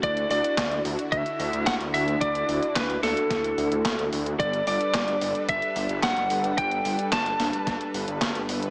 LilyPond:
<<
  \new Staff \with { instrumentName = "Lead electric guitar" } { \time 4/4 \key d \major \tempo 4 = 110 d''8 d''4 r8 e''4 fis''8 e''8 | d''4 b'8 a'2 r8 | d''8 d''4. e''4 fis''4 | g''4 a''2~ a''8 r8 | }
  \new Staff \with { instrumentName = "Supersaw synth" } { \time 4/4 \key d \major <d d' e' fis'>1~ | <d d' e' fis'>1 | <g d' a' b'>1~ | <g d' a' b'>1 | }
  \new Staff \with { instrumentName = "Detuned saw bass" } { \clef bass \time 4/4 \key d \major d,8 d,16 r16 d,8 d,16 r16 d,16 r16 d,16 d,16 d,16 d,16 d,8 | d,8 d,16 r16 d,8 d,16 r16 d,8 d,16 d,16 d,16 d,16 d,8 | g,,8 g,,16 r16 g,,8 g,,16 r16 g,,16 r16 g,,16 g,,16 g,,16 g,,16 g,,8 | g,,8 g,,16 r16 g,,8 g,,16 r16 g,,16 r16 g,,16 g,,16 g,,16 g,,16 g,,8 | }
  \new DrumStaff \with { instrumentName = "Drums" } \drummode { \time 4/4 <hh bd>16 hh16 hho16 hh16 <hc hh bd sn>16 hh16 hho16 hh16 <hh bd>16 hh16 hho16 hh16 <hc hh bd sn>16 hh16 hho16 hh16 | <hh bd>16 hh16 hho16 hh16 <hc hh bd sn>16 hh16 <hho sn>16 hh16 <hh bd sn>16 hh16 hho16 hh16 <hc hh bd sn>16 hh16 hho16 hh16 | <hh bd>16 hh16 hho16 hh16 <hc hh bd sn>16 hh16 hho16 hh16 <hh bd>16 hh16 hho16 hh16 <hc hh bd sn>16 hh16 hho16 hh16 | <hh bd>16 hh16 hho16 hh16 <hc hh bd sn>16 hh16 <hho sn>16 hh16 <hh bd sn>16 hh16 hho16 hh16 <hc hh bd sn>16 hh16 hho16 hh16 | }
>>